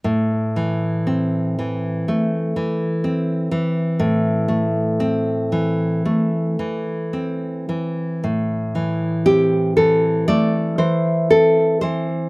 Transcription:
X:1
M:4/4
L:1/8
Q:1/4=59
K:Am
V:1 name="Nylon-string guitar"
A,, E, C E, A, E, C E, | A,, A, C E, A, E, C E, | A,, E, [CG] [E,A] [A,d] [E,c] [CA] [E,c] |]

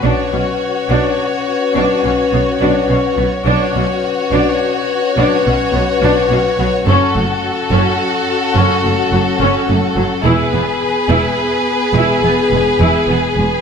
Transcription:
X:1
M:12/8
L:1/8
Q:3/8=71
K:Bdor
V:1 name="Violin section"
c12 | c12 | A12 | B12 |]
V:2 name="Violin section"
F12 | F12 | F12 | G12 |]
V:3 name="French horn section"
[CB]12 | [CB]12 | [CA]12 | [B,G]12 |]
V:4 name="Viola section"
D C z D z2 D C B, D C B, | D C z D z2 D C B, D C B, | C A, z C z2 C A, F, C A, F, | E B, z E z2 E B, G, E B, G, |]
V:5 name="Cello section" clef=bass
B,, B,, z B,, z2 B,, B,, B,, B,, B,, B,, | B,, B,, z B,, z2 B,, B,, B,, B,, B,, B,, | F,, F,, z F,, z2 F,, F,, F,, F,, F,, F,, | E,, E,, z E,, z2 E,, E,, E,, E,, E,, E,, |]
V:6 name="Double bass section" clef=bass
B,,, B,,, z B,,, z2 B,,, B,,, B,,, B,,, B,,, B,,, | B,,, B,,, z B,,, z2 B,,, B,,, B,,, B,,, B,,, B,,, | F,,, F,,, z F,,, z2 F,,, F,,, F,,, F,,, F,,, F,,, | E,,, E,,, z E,,, z2 E,,, E,,, E,,, E,,, E,,, E,,, |]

